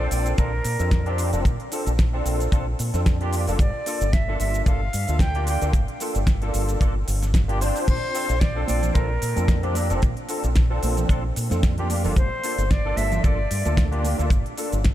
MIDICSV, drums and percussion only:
0, 0, Header, 1, 2, 480
1, 0, Start_track
1, 0, Tempo, 535714
1, 1302, Time_signature, 4, 2, 24, 8
1, 13389, End_track
2, 0, Start_track
2, 0, Title_t, "Drums"
2, 100, Note_on_c, 9, 46, 108
2, 105, Note_on_c, 9, 69, 85
2, 190, Note_off_c, 9, 46, 0
2, 194, Note_off_c, 9, 69, 0
2, 231, Note_on_c, 9, 42, 49
2, 236, Note_on_c, 9, 69, 44
2, 321, Note_off_c, 9, 42, 0
2, 326, Note_off_c, 9, 69, 0
2, 340, Note_on_c, 9, 42, 67
2, 343, Note_on_c, 9, 36, 125
2, 345, Note_on_c, 9, 69, 35
2, 430, Note_off_c, 9, 42, 0
2, 432, Note_off_c, 9, 36, 0
2, 434, Note_off_c, 9, 69, 0
2, 578, Note_on_c, 9, 46, 111
2, 583, Note_on_c, 9, 69, 79
2, 667, Note_off_c, 9, 46, 0
2, 672, Note_off_c, 9, 69, 0
2, 712, Note_on_c, 9, 42, 49
2, 716, Note_on_c, 9, 69, 45
2, 801, Note_off_c, 9, 42, 0
2, 806, Note_off_c, 9, 69, 0
2, 819, Note_on_c, 9, 36, 127
2, 819, Note_on_c, 9, 38, 120
2, 819, Note_on_c, 9, 42, 66
2, 824, Note_on_c, 9, 69, 36
2, 908, Note_off_c, 9, 36, 0
2, 908, Note_off_c, 9, 38, 0
2, 908, Note_off_c, 9, 42, 0
2, 913, Note_off_c, 9, 69, 0
2, 951, Note_on_c, 9, 42, 34
2, 1040, Note_off_c, 9, 42, 0
2, 1060, Note_on_c, 9, 46, 108
2, 1064, Note_on_c, 9, 69, 80
2, 1149, Note_off_c, 9, 46, 0
2, 1154, Note_off_c, 9, 69, 0
2, 1191, Note_on_c, 9, 42, 50
2, 1196, Note_on_c, 9, 69, 46
2, 1281, Note_off_c, 9, 42, 0
2, 1285, Note_off_c, 9, 69, 0
2, 1300, Note_on_c, 9, 36, 112
2, 1301, Note_on_c, 9, 42, 66
2, 1306, Note_on_c, 9, 69, 34
2, 1390, Note_off_c, 9, 36, 0
2, 1391, Note_off_c, 9, 42, 0
2, 1396, Note_off_c, 9, 69, 0
2, 1432, Note_on_c, 9, 42, 35
2, 1522, Note_off_c, 9, 42, 0
2, 1539, Note_on_c, 9, 46, 103
2, 1544, Note_on_c, 9, 69, 84
2, 1629, Note_off_c, 9, 46, 0
2, 1634, Note_off_c, 9, 69, 0
2, 1671, Note_on_c, 9, 42, 55
2, 1676, Note_on_c, 9, 69, 50
2, 1760, Note_off_c, 9, 42, 0
2, 1765, Note_off_c, 9, 69, 0
2, 1782, Note_on_c, 9, 38, 120
2, 1782, Note_on_c, 9, 42, 69
2, 1783, Note_on_c, 9, 36, 110
2, 1787, Note_on_c, 9, 69, 36
2, 1871, Note_off_c, 9, 38, 0
2, 1871, Note_off_c, 9, 42, 0
2, 1873, Note_off_c, 9, 36, 0
2, 1876, Note_off_c, 9, 69, 0
2, 2022, Note_on_c, 9, 46, 98
2, 2027, Note_on_c, 9, 69, 84
2, 2112, Note_off_c, 9, 46, 0
2, 2116, Note_off_c, 9, 69, 0
2, 2154, Note_on_c, 9, 42, 49
2, 2158, Note_on_c, 9, 69, 46
2, 2243, Note_off_c, 9, 42, 0
2, 2248, Note_off_c, 9, 69, 0
2, 2260, Note_on_c, 9, 36, 114
2, 2264, Note_on_c, 9, 42, 68
2, 2269, Note_on_c, 9, 69, 36
2, 2349, Note_off_c, 9, 36, 0
2, 2353, Note_off_c, 9, 42, 0
2, 2358, Note_off_c, 9, 69, 0
2, 2501, Note_on_c, 9, 46, 105
2, 2506, Note_on_c, 9, 69, 87
2, 2591, Note_off_c, 9, 46, 0
2, 2596, Note_off_c, 9, 69, 0
2, 2633, Note_on_c, 9, 38, 37
2, 2633, Note_on_c, 9, 42, 51
2, 2638, Note_on_c, 9, 69, 46
2, 2722, Note_off_c, 9, 38, 0
2, 2723, Note_off_c, 9, 42, 0
2, 2728, Note_off_c, 9, 69, 0
2, 2742, Note_on_c, 9, 38, 115
2, 2743, Note_on_c, 9, 42, 66
2, 2745, Note_on_c, 9, 36, 127
2, 2747, Note_on_c, 9, 69, 37
2, 2832, Note_off_c, 9, 38, 0
2, 2832, Note_off_c, 9, 42, 0
2, 2834, Note_off_c, 9, 36, 0
2, 2837, Note_off_c, 9, 69, 0
2, 2873, Note_on_c, 9, 42, 36
2, 2963, Note_off_c, 9, 42, 0
2, 2980, Note_on_c, 9, 46, 99
2, 2985, Note_on_c, 9, 69, 78
2, 3070, Note_off_c, 9, 46, 0
2, 3075, Note_off_c, 9, 69, 0
2, 3113, Note_on_c, 9, 46, 58
2, 3118, Note_on_c, 9, 69, 47
2, 3203, Note_off_c, 9, 46, 0
2, 3208, Note_off_c, 9, 69, 0
2, 3217, Note_on_c, 9, 36, 107
2, 3222, Note_on_c, 9, 42, 68
2, 3227, Note_on_c, 9, 69, 35
2, 3307, Note_off_c, 9, 36, 0
2, 3311, Note_off_c, 9, 42, 0
2, 3316, Note_off_c, 9, 69, 0
2, 3461, Note_on_c, 9, 46, 104
2, 3466, Note_on_c, 9, 69, 89
2, 3551, Note_off_c, 9, 46, 0
2, 3556, Note_off_c, 9, 69, 0
2, 3593, Note_on_c, 9, 42, 54
2, 3598, Note_on_c, 9, 69, 46
2, 3683, Note_off_c, 9, 42, 0
2, 3687, Note_off_c, 9, 69, 0
2, 3702, Note_on_c, 9, 38, 118
2, 3702, Note_on_c, 9, 42, 70
2, 3703, Note_on_c, 9, 36, 124
2, 3707, Note_on_c, 9, 69, 36
2, 3792, Note_off_c, 9, 38, 0
2, 3792, Note_off_c, 9, 42, 0
2, 3793, Note_off_c, 9, 36, 0
2, 3797, Note_off_c, 9, 69, 0
2, 3940, Note_on_c, 9, 46, 97
2, 3945, Note_on_c, 9, 69, 85
2, 4030, Note_off_c, 9, 46, 0
2, 4035, Note_off_c, 9, 69, 0
2, 4070, Note_on_c, 9, 42, 52
2, 4074, Note_on_c, 9, 69, 47
2, 4159, Note_off_c, 9, 42, 0
2, 4164, Note_off_c, 9, 69, 0
2, 4178, Note_on_c, 9, 36, 127
2, 4180, Note_on_c, 9, 42, 72
2, 4185, Note_on_c, 9, 69, 37
2, 4267, Note_off_c, 9, 36, 0
2, 4270, Note_off_c, 9, 42, 0
2, 4275, Note_off_c, 9, 69, 0
2, 4419, Note_on_c, 9, 46, 108
2, 4424, Note_on_c, 9, 69, 85
2, 4509, Note_off_c, 9, 46, 0
2, 4514, Note_off_c, 9, 69, 0
2, 4551, Note_on_c, 9, 42, 55
2, 4556, Note_on_c, 9, 69, 48
2, 4641, Note_off_c, 9, 42, 0
2, 4645, Note_off_c, 9, 69, 0
2, 4653, Note_on_c, 9, 36, 111
2, 4662, Note_on_c, 9, 38, 123
2, 4662, Note_on_c, 9, 42, 72
2, 4667, Note_on_c, 9, 69, 38
2, 4743, Note_off_c, 9, 36, 0
2, 4751, Note_off_c, 9, 38, 0
2, 4752, Note_off_c, 9, 42, 0
2, 4756, Note_off_c, 9, 69, 0
2, 4792, Note_on_c, 9, 42, 37
2, 4882, Note_off_c, 9, 42, 0
2, 4900, Note_on_c, 9, 46, 105
2, 4905, Note_on_c, 9, 69, 83
2, 4990, Note_off_c, 9, 46, 0
2, 4995, Note_off_c, 9, 69, 0
2, 5032, Note_on_c, 9, 42, 55
2, 5037, Note_on_c, 9, 69, 46
2, 5122, Note_off_c, 9, 42, 0
2, 5127, Note_off_c, 9, 69, 0
2, 5138, Note_on_c, 9, 36, 114
2, 5140, Note_on_c, 9, 42, 73
2, 5145, Note_on_c, 9, 69, 36
2, 5228, Note_off_c, 9, 36, 0
2, 5230, Note_off_c, 9, 42, 0
2, 5235, Note_off_c, 9, 69, 0
2, 5271, Note_on_c, 9, 42, 36
2, 5361, Note_off_c, 9, 42, 0
2, 5379, Note_on_c, 9, 46, 105
2, 5384, Note_on_c, 9, 69, 84
2, 5468, Note_off_c, 9, 46, 0
2, 5473, Note_off_c, 9, 69, 0
2, 5509, Note_on_c, 9, 42, 57
2, 5514, Note_on_c, 9, 69, 48
2, 5598, Note_off_c, 9, 42, 0
2, 5603, Note_off_c, 9, 69, 0
2, 5616, Note_on_c, 9, 36, 111
2, 5619, Note_on_c, 9, 38, 124
2, 5620, Note_on_c, 9, 42, 73
2, 5624, Note_on_c, 9, 69, 34
2, 5706, Note_off_c, 9, 36, 0
2, 5709, Note_off_c, 9, 38, 0
2, 5709, Note_off_c, 9, 42, 0
2, 5714, Note_off_c, 9, 69, 0
2, 5750, Note_on_c, 9, 42, 39
2, 5839, Note_off_c, 9, 42, 0
2, 5859, Note_on_c, 9, 46, 99
2, 5863, Note_on_c, 9, 69, 82
2, 5948, Note_off_c, 9, 46, 0
2, 5953, Note_off_c, 9, 69, 0
2, 5991, Note_on_c, 9, 42, 52
2, 5996, Note_on_c, 9, 69, 44
2, 6080, Note_off_c, 9, 42, 0
2, 6085, Note_off_c, 9, 69, 0
2, 6100, Note_on_c, 9, 36, 110
2, 6101, Note_on_c, 9, 42, 72
2, 6106, Note_on_c, 9, 69, 37
2, 6189, Note_off_c, 9, 36, 0
2, 6191, Note_off_c, 9, 42, 0
2, 6196, Note_off_c, 9, 69, 0
2, 6341, Note_on_c, 9, 46, 108
2, 6346, Note_on_c, 9, 69, 84
2, 6431, Note_off_c, 9, 46, 0
2, 6435, Note_off_c, 9, 69, 0
2, 6474, Note_on_c, 9, 38, 38
2, 6474, Note_on_c, 9, 42, 55
2, 6479, Note_on_c, 9, 69, 45
2, 6564, Note_off_c, 9, 38, 0
2, 6564, Note_off_c, 9, 42, 0
2, 6569, Note_off_c, 9, 69, 0
2, 6576, Note_on_c, 9, 36, 111
2, 6582, Note_on_c, 9, 38, 125
2, 6582, Note_on_c, 9, 42, 68
2, 6587, Note_on_c, 9, 69, 34
2, 6666, Note_off_c, 9, 36, 0
2, 6672, Note_off_c, 9, 38, 0
2, 6672, Note_off_c, 9, 42, 0
2, 6677, Note_off_c, 9, 69, 0
2, 6713, Note_on_c, 9, 42, 40
2, 6803, Note_off_c, 9, 42, 0
2, 6822, Note_on_c, 9, 46, 106
2, 6826, Note_on_c, 9, 69, 82
2, 6911, Note_off_c, 9, 46, 0
2, 6916, Note_off_c, 9, 69, 0
2, 6951, Note_on_c, 9, 46, 61
2, 6956, Note_on_c, 9, 69, 45
2, 7041, Note_off_c, 9, 46, 0
2, 7045, Note_off_c, 9, 69, 0
2, 7059, Note_on_c, 9, 42, 67
2, 7059, Note_on_c, 9, 49, 76
2, 7060, Note_on_c, 9, 36, 118
2, 7064, Note_on_c, 9, 69, 36
2, 7149, Note_off_c, 9, 36, 0
2, 7149, Note_off_c, 9, 42, 0
2, 7149, Note_off_c, 9, 49, 0
2, 7154, Note_off_c, 9, 69, 0
2, 7299, Note_on_c, 9, 46, 114
2, 7303, Note_on_c, 9, 69, 84
2, 7388, Note_off_c, 9, 46, 0
2, 7393, Note_off_c, 9, 69, 0
2, 7431, Note_on_c, 9, 42, 57
2, 7436, Note_on_c, 9, 69, 44
2, 7521, Note_off_c, 9, 42, 0
2, 7525, Note_off_c, 9, 69, 0
2, 7538, Note_on_c, 9, 36, 122
2, 7538, Note_on_c, 9, 38, 127
2, 7538, Note_on_c, 9, 42, 74
2, 7543, Note_on_c, 9, 69, 34
2, 7628, Note_off_c, 9, 36, 0
2, 7628, Note_off_c, 9, 38, 0
2, 7628, Note_off_c, 9, 42, 0
2, 7633, Note_off_c, 9, 69, 0
2, 7774, Note_on_c, 9, 63, 91
2, 7780, Note_on_c, 9, 46, 109
2, 7785, Note_on_c, 9, 69, 80
2, 7863, Note_off_c, 9, 63, 0
2, 7870, Note_off_c, 9, 46, 0
2, 7875, Note_off_c, 9, 69, 0
2, 7910, Note_on_c, 9, 64, 90
2, 7911, Note_on_c, 9, 42, 54
2, 7916, Note_on_c, 9, 69, 45
2, 7999, Note_off_c, 9, 64, 0
2, 8001, Note_off_c, 9, 42, 0
2, 8006, Note_off_c, 9, 69, 0
2, 8021, Note_on_c, 9, 42, 72
2, 8023, Note_on_c, 9, 36, 123
2, 8025, Note_on_c, 9, 69, 36
2, 8110, Note_off_c, 9, 42, 0
2, 8112, Note_off_c, 9, 36, 0
2, 8115, Note_off_c, 9, 69, 0
2, 8261, Note_on_c, 9, 46, 113
2, 8265, Note_on_c, 9, 69, 83
2, 8350, Note_off_c, 9, 46, 0
2, 8355, Note_off_c, 9, 69, 0
2, 8388, Note_on_c, 9, 63, 91
2, 8392, Note_on_c, 9, 42, 55
2, 8397, Note_on_c, 9, 69, 47
2, 8478, Note_off_c, 9, 63, 0
2, 8481, Note_off_c, 9, 42, 0
2, 8486, Note_off_c, 9, 69, 0
2, 8496, Note_on_c, 9, 36, 126
2, 8500, Note_on_c, 9, 38, 124
2, 8500, Note_on_c, 9, 42, 71
2, 8505, Note_on_c, 9, 69, 36
2, 8586, Note_off_c, 9, 36, 0
2, 8590, Note_off_c, 9, 38, 0
2, 8590, Note_off_c, 9, 42, 0
2, 8595, Note_off_c, 9, 69, 0
2, 8631, Note_on_c, 9, 42, 37
2, 8635, Note_on_c, 9, 63, 59
2, 8720, Note_off_c, 9, 42, 0
2, 8724, Note_off_c, 9, 63, 0
2, 8735, Note_on_c, 9, 63, 85
2, 8739, Note_on_c, 9, 46, 105
2, 8743, Note_on_c, 9, 69, 78
2, 8825, Note_off_c, 9, 63, 0
2, 8828, Note_off_c, 9, 46, 0
2, 8833, Note_off_c, 9, 69, 0
2, 8872, Note_on_c, 9, 42, 55
2, 8876, Note_on_c, 9, 69, 43
2, 8961, Note_off_c, 9, 42, 0
2, 8966, Note_off_c, 9, 69, 0
2, 8979, Note_on_c, 9, 42, 66
2, 8984, Note_on_c, 9, 36, 120
2, 8984, Note_on_c, 9, 69, 34
2, 9069, Note_off_c, 9, 42, 0
2, 9074, Note_off_c, 9, 36, 0
2, 9074, Note_off_c, 9, 69, 0
2, 9110, Note_on_c, 9, 42, 36
2, 9200, Note_off_c, 9, 42, 0
2, 9217, Note_on_c, 9, 46, 110
2, 9221, Note_on_c, 9, 69, 75
2, 9306, Note_off_c, 9, 46, 0
2, 9311, Note_off_c, 9, 69, 0
2, 9351, Note_on_c, 9, 42, 54
2, 9356, Note_on_c, 9, 69, 43
2, 9441, Note_off_c, 9, 42, 0
2, 9445, Note_off_c, 9, 69, 0
2, 9458, Note_on_c, 9, 38, 124
2, 9458, Note_on_c, 9, 42, 65
2, 9463, Note_on_c, 9, 69, 34
2, 9467, Note_on_c, 9, 36, 122
2, 9547, Note_off_c, 9, 38, 0
2, 9547, Note_off_c, 9, 42, 0
2, 9552, Note_off_c, 9, 69, 0
2, 9557, Note_off_c, 9, 36, 0
2, 9701, Note_on_c, 9, 46, 108
2, 9706, Note_on_c, 9, 69, 78
2, 9712, Note_on_c, 9, 63, 99
2, 9791, Note_off_c, 9, 46, 0
2, 9795, Note_off_c, 9, 69, 0
2, 9802, Note_off_c, 9, 63, 0
2, 9831, Note_on_c, 9, 42, 53
2, 9834, Note_on_c, 9, 64, 91
2, 9836, Note_on_c, 9, 69, 41
2, 9920, Note_off_c, 9, 42, 0
2, 9923, Note_off_c, 9, 64, 0
2, 9925, Note_off_c, 9, 69, 0
2, 9939, Note_on_c, 9, 36, 117
2, 9943, Note_on_c, 9, 42, 67
2, 9948, Note_on_c, 9, 69, 35
2, 10028, Note_off_c, 9, 36, 0
2, 10032, Note_off_c, 9, 42, 0
2, 10037, Note_off_c, 9, 69, 0
2, 10182, Note_on_c, 9, 46, 122
2, 10187, Note_on_c, 9, 69, 83
2, 10272, Note_off_c, 9, 46, 0
2, 10277, Note_off_c, 9, 69, 0
2, 10304, Note_on_c, 9, 63, 104
2, 10314, Note_on_c, 9, 38, 39
2, 10314, Note_on_c, 9, 42, 54
2, 10319, Note_on_c, 9, 69, 43
2, 10394, Note_off_c, 9, 63, 0
2, 10404, Note_off_c, 9, 38, 0
2, 10404, Note_off_c, 9, 42, 0
2, 10409, Note_off_c, 9, 69, 0
2, 10421, Note_on_c, 9, 38, 123
2, 10421, Note_on_c, 9, 42, 71
2, 10423, Note_on_c, 9, 36, 127
2, 10426, Note_on_c, 9, 69, 34
2, 10511, Note_off_c, 9, 38, 0
2, 10511, Note_off_c, 9, 42, 0
2, 10512, Note_off_c, 9, 36, 0
2, 10516, Note_off_c, 9, 69, 0
2, 10552, Note_on_c, 9, 42, 40
2, 10552, Note_on_c, 9, 64, 90
2, 10554, Note_on_c, 9, 63, 65
2, 10642, Note_off_c, 9, 42, 0
2, 10642, Note_off_c, 9, 64, 0
2, 10643, Note_off_c, 9, 63, 0
2, 10661, Note_on_c, 9, 46, 117
2, 10663, Note_on_c, 9, 63, 98
2, 10666, Note_on_c, 9, 69, 74
2, 10751, Note_off_c, 9, 46, 0
2, 10753, Note_off_c, 9, 63, 0
2, 10756, Note_off_c, 9, 69, 0
2, 10789, Note_on_c, 9, 64, 82
2, 10793, Note_on_c, 9, 46, 63
2, 10798, Note_on_c, 9, 69, 40
2, 10879, Note_off_c, 9, 64, 0
2, 10882, Note_off_c, 9, 46, 0
2, 10887, Note_off_c, 9, 69, 0
2, 10900, Note_on_c, 9, 36, 115
2, 10900, Note_on_c, 9, 42, 68
2, 10905, Note_on_c, 9, 69, 34
2, 10989, Note_off_c, 9, 36, 0
2, 10990, Note_off_c, 9, 42, 0
2, 10994, Note_off_c, 9, 69, 0
2, 11142, Note_on_c, 9, 46, 115
2, 11147, Note_on_c, 9, 69, 79
2, 11232, Note_off_c, 9, 46, 0
2, 11236, Note_off_c, 9, 69, 0
2, 11276, Note_on_c, 9, 42, 52
2, 11281, Note_on_c, 9, 69, 43
2, 11365, Note_off_c, 9, 42, 0
2, 11370, Note_off_c, 9, 69, 0
2, 11385, Note_on_c, 9, 38, 127
2, 11385, Note_on_c, 9, 42, 68
2, 11386, Note_on_c, 9, 36, 118
2, 11390, Note_on_c, 9, 69, 31
2, 11475, Note_off_c, 9, 38, 0
2, 11475, Note_off_c, 9, 42, 0
2, 11476, Note_off_c, 9, 36, 0
2, 11480, Note_off_c, 9, 69, 0
2, 11617, Note_on_c, 9, 63, 100
2, 11624, Note_on_c, 9, 46, 112
2, 11629, Note_on_c, 9, 69, 74
2, 11706, Note_off_c, 9, 63, 0
2, 11713, Note_off_c, 9, 46, 0
2, 11718, Note_off_c, 9, 69, 0
2, 11753, Note_on_c, 9, 42, 50
2, 11756, Note_on_c, 9, 64, 102
2, 11758, Note_on_c, 9, 69, 39
2, 11843, Note_off_c, 9, 42, 0
2, 11846, Note_off_c, 9, 64, 0
2, 11848, Note_off_c, 9, 69, 0
2, 11863, Note_on_c, 9, 42, 66
2, 11864, Note_on_c, 9, 36, 113
2, 11868, Note_on_c, 9, 69, 35
2, 11953, Note_off_c, 9, 42, 0
2, 11954, Note_off_c, 9, 36, 0
2, 11958, Note_off_c, 9, 69, 0
2, 12104, Note_on_c, 9, 46, 121
2, 12108, Note_on_c, 9, 69, 78
2, 12193, Note_off_c, 9, 46, 0
2, 12198, Note_off_c, 9, 69, 0
2, 12235, Note_on_c, 9, 42, 52
2, 12236, Note_on_c, 9, 63, 91
2, 12239, Note_on_c, 9, 69, 43
2, 12324, Note_off_c, 9, 42, 0
2, 12326, Note_off_c, 9, 63, 0
2, 12329, Note_off_c, 9, 69, 0
2, 12341, Note_on_c, 9, 36, 126
2, 12345, Note_on_c, 9, 38, 127
2, 12345, Note_on_c, 9, 42, 67
2, 12350, Note_on_c, 9, 69, 33
2, 12431, Note_off_c, 9, 36, 0
2, 12435, Note_off_c, 9, 38, 0
2, 12435, Note_off_c, 9, 42, 0
2, 12440, Note_off_c, 9, 69, 0
2, 12471, Note_on_c, 9, 63, 58
2, 12477, Note_on_c, 9, 42, 37
2, 12560, Note_off_c, 9, 63, 0
2, 12566, Note_off_c, 9, 42, 0
2, 12581, Note_on_c, 9, 63, 89
2, 12585, Note_on_c, 9, 46, 112
2, 12590, Note_on_c, 9, 69, 77
2, 12670, Note_off_c, 9, 63, 0
2, 12675, Note_off_c, 9, 46, 0
2, 12680, Note_off_c, 9, 69, 0
2, 12718, Note_on_c, 9, 42, 49
2, 12722, Note_on_c, 9, 69, 40
2, 12807, Note_off_c, 9, 42, 0
2, 12812, Note_off_c, 9, 69, 0
2, 12816, Note_on_c, 9, 36, 127
2, 12824, Note_on_c, 9, 42, 66
2, 12829, Note_on_c, 9, 69, 34
2, 12906, Note_off_c, 9, 36, 0
2, 12914, Note_off_c, 9, 42, 0
2, 12918, Note_off_c, 9, 69, 0
2, 12955, Note_on_c, 9, 42, 34
2, 13044, Note_off_c, 9, 42, 0
2, 13060, Note_on_c, 9, 46, 114
2, 13064, Note_on_c, 9, 69, 79
2, 13149, Note_off_c, 9, 46, 0
2, 13154, Note_off_c, 9, 69, 0
2, 13193, Note_on_c, 9, 42, 53
2, 13198, Note_on_c, 9, 69, 47
2, 13283, Note_off_c, 9, 42, 0
2, 13288, Note_off_c, 9, 69, 0
2, 13301, Note_on_c, 9, 38, 127
2, 13301, Note_on_c, 9, 42, 64
2, 13306, Note_on_c, 9, 69, 34
2, 13310, Note_on_c, 9, 36, 126
2, 13389, Note_off_c, 9, 36, 0
2, 13389, Note_off_c, 9, 38, 0
2, 13389, Note_off_c, 9, 42, 0
2, 13389, Note_off_c, 9, 69, 0
2, 13389, End_track
0, 0, End_of_file